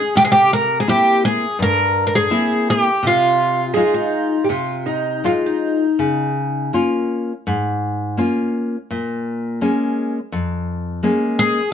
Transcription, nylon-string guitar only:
0.15 C3
0.87 A#3 C4 E4
1.59 G2
2.30 A#3 C4 E4
3.03 C3
3.76 G#3 D#4 F4
4.49 C3
5.24 G#3 D#4 F4
5.99 C#3
6.73 A#3 C#4 F4
7.47 G#2
8.17 A#3 C#4 F4
8.91 A#2
9.61 G#3 A#3 C#4
10.32 F2
11.03 G#3 A#3 C#4

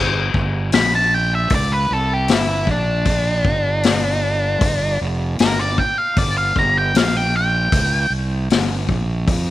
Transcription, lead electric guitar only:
0.74 B5
0.95 A5
1.14 G5
1.35 E5
1.55 D5
1.73 B4
1.93 A4
2.14 G4
2.32 E4
2.71 D4
5.41 A#4
5.59 D5
5.78 G5
5.98 F5
6.18 D5
6.38 F5
6.59 A#5
6.78 G5
6.97 F5
7.17 G5
7.37 G5

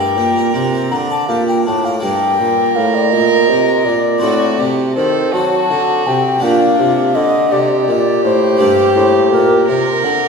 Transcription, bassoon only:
Already playing: G2
0.17 A#2
0.54 C3
0.91 D3
1.29 A#2
1.66 A2
2.03 G2
2.40 A#2
2.76 A2
3.12 A#2
3.49 C3
3.85 A#2
4.22 A2
4.59 C3
4.96 D#3
5.34 F#3
5.71 D3
6.07 C3
6.43 A#2
6.79 C3
7.15 D3
7.52 C3
7.88 A#2
8.24 A2
8.60 G2
8.96 A2
9.32 A#2
9.68 C3
10.04 D3

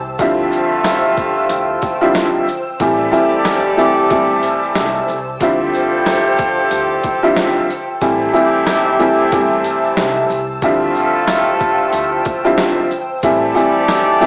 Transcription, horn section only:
0.18 A3 F4 A4
2.81 G4 A4 D5
5.41 G4 A4 C5
8.02 C4 E4 G4
10.62 A3 F4 A4
13.24 G4 A4 D5

